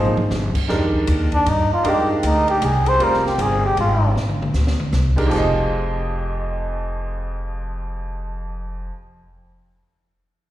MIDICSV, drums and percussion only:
0, 0, Header, 1, 2, 480
1, 0, Start_track
1, 0, Tempo, 384615
1, 866, Time_signature, 3, 2, 24, 8
1, 13110, End_track
2, 0, Start_track
2, 0, Title_t, "Drums"
2, 59, Note_on_c, 9, 48, 57
2, 183, Note_off_c, 9, 48, 0
2, 215, Note_on_c, 9, 48, 70
2, 339, Note_off_c, 9, 48, 0
2, 380, Note_on_c, 9, 38, 58
2, 505, Note_off_c, 9, 38, 0
2, 684, Note_on_c, 9, 36, 81
2, 685, Note_on_c, 9, 49, 76
2, 809, Note_off_c, 9, 36, 0
2, 810, Note_off_c, 9, 49, 0
2, 861, Note_on_c, 9, 38, 39
2, 986, Note_off_c, 9, 38, 0
2, 1167, Note_on_c, 9, 36, 56
2, 1292, Note_off_c, 9, 36, 0
2, 1339, Note_on_c, 9, 44, 60
2, 1339, Note_on_c, 9, 51, 63
2, 1464, Note_off_c, 9, 44, 0
2, 1464, Note_off_c, 9, 51, 0
2, 1645, Note_on_c, 9, 51, 38
2, 1648, Note_on_c, 9, 36, 53
2, 1770, Note_off_c, 9, 51, 0
2, 1773, Note_off_c, 9, 36, 0
2, 1825, Note_on_c, 9, 51, 60
2, 1950, Note_off_c, 9, 51, 0
2, 2303, Note_on_c, 9, 51, 59
2, 2428, Note_off_c, 9, 51, 0
2, 2783, Note_on_c, 9, 44, 60
2, 2783, Note_on_c, 9, 51, 62
2, 2907, Note_off_c, 9, 44, 0
2, 2907, Note_off_c, 9, 51, 0
2, 3092, Note_on_c, 9, 51, 36
2, 3217, Note_off_c, 9, 51, 0
2, 3265, Note_on_c, 9, 44, 54
2, 3265, Note_on_c, 9, 51, 65
2, 3390, Note_off_c, 9, 44, 0
2, 3390, Note_off_c, 9, 51, 0
2, 3572, Note_on_c, 9, 51, 49
2, 3696, Note_off_c, 9, 51, 0
2, 3746, Note_on_c, 9, 51, 58
2, 3870, Note_off_c, 9, 51, 0
2, 3914, Note_on_c, 9, 38, 29
2, 4039, Note_off_c, 9, 38, 0
2, 4075, Note_on_c, 9, 38, 40
2, 4199, Note_off_c, 9, 38, 0
2, 4229, Note_on_c, 9, 44, 51
2, 4229, Note_on_c, 9, 51, 61
2, 4354, Note_off_c, 9, 44, 0
2, 4354, Note_off_c, 9, 51, 0
2, 4707, Note_on_c, 9, 51, 56
2, 4832, Note_off_c, 9, 51, 0
2, 5197, Note_on_c, 9, 38, 41
2, 5322, Note_off_c, 9, 38, 0
2, 5356, Note_on_c, 9, 47, 47
2, 5481, Note_off_c, 9, 47, 0
2, 5521, Note_on_c, 9, 47, 64
2, 5646, Note_off_c, 9, 47, 0
2, 5666, Note_on_c, 9, 44, 51
2, 5672, Note_on_c, 9, 38, 53
2, 5791, Note_off_c, 9, 44, 0
2, 5797, Note_off_c, 9, 38, 0
2, 5831, Note_on_c, 9, 38, 65
2, 5956, Note_off_c, 9, 38, 0
2, 5990, Note_on_c, 9, 47, 60
2, 6115, Note_off_c, 9, 47, 0
2, 6145, Note_on_c, 9, 44, 51
2, 6151, Note_on_c, 9, 38, 58
2, 6270, Note_off_c, 9, 44, 0
2, 6276, Note_off_c, 9, 38, 0
2, 6461, Note_on_c, 9, 36, 81
2, 6463, Note_on_c, 9, 49, 71
2, 6585, Note_off_c, 9, 36, 0
2, 6588, Note_off_c, 9, 49, 0
2, 6628, Note_on_c, 9, 55, 78
2, 6633, Note_on_c, 9, 36, 97
2, 6753, Note_off_c, 9, 55, 0
2, 6758, Note_off_c, 9, 36, 0
2, 13110, End_track
0, 0, End_of_file